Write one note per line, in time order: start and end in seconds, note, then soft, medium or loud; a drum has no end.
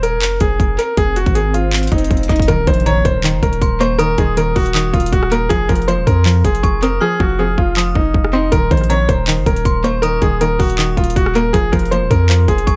0.00 0.19 D#1 loud
0.00 0.38 A#4 medium
0.00 closed hi-hat medium
0.00 swell medium
0.18 0.40 F1 medium
0.22 clap loud
0.22 closed hi-hat medium
0.40 0.59 F1 loud
0.40 0.76 G#4 medium
0.40 kick medium
0.40 closed hi-hat medium
0.60 0.78 F1 loud
0.60 kick loud
0.60 closed hi-hat medium
0.79 0.96 A#4 medium
0.79 closed hi-hat medium
0.97 1.25 F1 loud
0.97 1.15 G#4 loud
0.97 kick loud
0.97 closed hi-hat medium
1.16 1.34 F#4 medium
1.16 closed hi-hat medium
1.26 1.89 G#1 loud
1.26 kick medium
1.26 closed hi-hat soft
1.35 1.53 G#4 medium
1.35 closed hi-hat medium
1.54 1.89 F4 medium
1.54 closed hi-hat medium
1.73 clap loud
1.73 closed hi-hat soft
1.78 closed hi-hat medium
1.83 closed hi-hat medium
1.87 closed hi-hat medium
1.92 2.10 F1 loud
1.92 2.27 D#4 medium
1.92 kick medium
1.92 closed hi-hat soft
1.98 closed hi-hat medium
2.04 closed hi-hat medium
2.11 2.29 F1 loud
2.11 kick medium
2.11 closed hi-hat soft
2.17 closed hi-hat medium
2.23 closed hi-hat medium
2.29 2.48 F1 loud
2.29 2.47 D#4 medium
2.29 kick medium
2.29 closed hi-hat medium
2.36 kick medium
2.36 closed hi-hat medium
2.42 closed hi-hat medium
2.48 2.66 D#1 loud
2.48 2.66 D#3 loud
2.48 2.66 A#4 loud
2.48 kick loud
2.48 closed hi-hat medium
2.48 impact medium
2.67 3.03 A#1 loud
2.67 2.85 D#3 medium
2.67 2.85 C5 medium
2.67 kick loud
2.67 closed hi-hat medium
2.74 closed hi-hat medium
2.80 closed hi-hat soft
2.86 3.23 D#3 medium
2.86 3.04 C#5 medium
2.86 3.58 A#5 medium
2.86 closed hi-hat medium
3.05 3.35 D#1 loud
3.05 3.41 C5 medium
3.05 kick medium
3.05 closed hi-hat medium
3.24 3.98 D#3 medium
3.24 clap loud
3.24 closed hi-hat medium
3.34 3.42 F#1 loud
3.43 3.61 D#1 loud
3.43 3.78 A#4 medium
3.43 kick medium
3.43 closed hi-hat medium
3.53 closed hi-hat soft
3.62 4.16 D#1 loud
3.62 3.80 C6 medium
3.62 kick medium
3.62 closed hi-hat medium
3.80 4.75 A#3 medium
3.80 3.99 C5 medium
3.80 3.98 C#6 medium
3.80 closed hi-hat medium
3.99 4.17 D#3 medium
3.99 4.17 A#4 loud
3.99 4.71 D#6 loud
3.99 closed hi-hat medium
4.18 4.54 D#1 loud
4.18 4.36 D#3 medium
4.18 4.36 G#4 loud
4.18 kick loud
4.18 closed hi-hat medium
4.37 4.73 D#3 medium
4.37 4.55 A#4 loud
4.37 closed hi-hat medium
4.56 4.92 D#1 loud
4.56 4.91 F#4 medium
4.56 kick medium
4.56 closed hi-hat soft
4.56 open hi-hat medium
4.66 closed hi-hat medium
4.74 5.50 D#3 medium
4.74 5.10 D#6 medium
4.74 clap loud
4.74 closed hi-hat medium
4.93 5.12 D#1 loud
4.93 5.11 F4 medium
4.93 kick medium
4.93 closed hi-hat soft
5.00 closed hi-hat medium
5.06 closed hi-hat medium
5.13 5.49 D#1 loud
5.13 5.31 F#4 medium
5.13 kick loud
5.13 closed hi-hat medium
5.23 cross-stick loud
5.31 5.50 A#3 medium
5.31 5.49 A#4 loud
5.31 closed hi-hat medium
5.49 5.68 F1 loud
5.49 5.68 F3 medium
5.49 5.68 G#4 loud
5.49 kick loud
5.49 closed hi-hat medium
5.69 5.99 F1 loud
5.69 5.87 F3 medium
5.69 5.87 A#4 medium
5.69 kick loud
5.69 closed hi-hat medium
5.75 closed hi-hat medium
5.82 closed hi-hat soft
5.88 6.24 F3 medium
5.88 6.06 C5 medium
5.88 6.59 C6 medium
5.88 closed hi-hat medium
5.98 6.06 D#1 loud
6.07 6.43 F2 loud
6.07 6.42 A#4 medium
6.07 kick medium
6.07 closed hi-hat medium
6.26 7.00 F3 medium
6.26 clap loud
6.26 closed hi-hat medium
6.45 6.63 F1 loud
6.45 6.80 G#4 medium
6.45 kick medium
6.45 closed hi-hat medium
6.55 closed hi-hat soft
6.63 7.00 F1 loud
6.63 6.81 C#6 medium
6.63 kick loud
6.63 closed hi-hat medium
6.82 7.77 C4 medium
6.82 7.00 A#4 medium
6.82 7.00 D#6 medium
6.82 closed hi-hat medium
7.01 7.19 F3 medium
7.01 7.19 G#4 loud
7.01 7.72 F6 loud
7.20 7.56 F1 loud
7.20 7.38 F3 medium
7.20 7.38 F#4 medium
7.20 kick loud
7.39 7.76 F3 medium
7.39 7.57 G#4 medium
7.58 7.94 F1 loud
7.58 7.93 F4 medium
7.58 kick medium
7.77 8.52 F3 medium
7.77 8.30 D#6 medium
7.77 clap loud
7.95 8.14 F1 loud
7.95 8.31 D#4 medium
7.95 kick medium
8.14 8.51 F1 loud
8.14 kick medium
8.24 cross-stick loud
8.33 8.52 C4 medium
8.33 8.51 D#4 medium
8.33 8.51 C6 medium
8.52 8.70 D#1 loud
8.52 8.70 D#3 medium
8.52 8.70 A#4 loud
8.52 kick loud
8.52 closed hi-hat medium
8.71 9.07 A#1 loud
8.71 8.89 D#3 medium
8.71 8.89 C5 medium
8.71 kick loud
8.71 closed hi-hat medium
8.77 closed hi-hat medium
8.84 closed hi-hat soft
8.90 9.26 D#3 medium
8.90 9.08 C#5 medium
8.90 9.61 A#5 medium
8.90 closed hi-hat medium
9.09 9.39 D#1 loud
9.09 9.44 C5 medium
9.09 kick medium
9.09 closed hi-hat medium
9.28 10.02 D#3 loud
9.28 clap loud
9.28 closed hi-hat medium
9.38 9.46 F#1 loud
9.46 9.65 D#1 loud
9.46 9.82 A#4 medium
9.46 kick medium
9.46 closed hi-hat medium
9.56 closed hi-hat soft
9.65 10.20 D#1 loud
9.65 9.83 C6 medium
9.65 kick loud
9.65 closed hi-hat medium
9.84 10.78 A#3 medium
9.84 10.02 C5 medium
9.84 10.02 C#6 medium
9.84 closed hi-hat medium
10.02 10.21 D#3 medium
10.02 10.20 A#4 loud
10.02 10.75 D#6 loud
10.02 closed hi-hat medium
10.21 10.58 D#1 loud
10.21 10.40 D#3 medium
10.21 10.40 G#4 medium
10.21 kick loud
10.21 closed hi-hat medium
10.41 10.77 D#3 medium
10.41 10.59 A#4 loud
10.41 closed hi-hat medium
10.59 10.96 D#1 loud
10.59 10.95 F#4 medium
10.59 kick medium
10.59 closed hi-hat soft
10.59 open hi-hat medium
10.70 closed hi-hat medium
10.78 11.54 D#3 medium
10.78 11.14 D#6 medium
10.78 clap loud
10.78 closed hi-hat medium
10.97 11.15 D#1 loud
10.97 11.15 F4 medium
10.97 kick medium
10.97 closed hi-hat soft
11.04 closed hi-hat medium
11.10 closed hi-hat medium
11.16 11.52 D#1 loud
11.16 11.34 F#4 medium
11.16 kick loud
11.16 closed hi-hat medium
11.26 cross-stick loud
11.35 11.54 A#3 medium
11.35 11.53 A#4 medium
11.35 closed hi-hat medium
11.53 11.72 F1 loud
11.53 11.72 F3 medium
11.53 11.71 G#4 loud
11.53 kick loud
11.53 closed hi-hat medium
11.72 12.03 F1 loud
11.72 11.91 F3 medium
11.72 11.90 A#4 medium
11.72 kick loud
11.72 closed hi-hat medium
11.79 closed hi-hat medium
11.85 closed hi-hat soft
11.91 12.28 F3 medium
11.91 12.09 C5 medium
11.91 12.63 C6 medium
11.91 closed hi-hat medium
12.02 12.10 D#1 loud
12.10 12.47 F2 loud
12.10 12.46 A#4 medium
12.10 kick medium
12.10 closed hi-hat medium
12.29 12.76 F3 medium
12.29 clap loud
12.29 closed hi-hat medium
12.48 12.66 F1 loud
12.48 12.76 G#4 medium
12.48 kick medium
12.48 closed hi-hat medium
12.58 closed hi-hat soft
12.67 12.76 F1 loud
12.67 12.76 C#6 medium
12.67 kick loud
12.67 closed hi-hat medium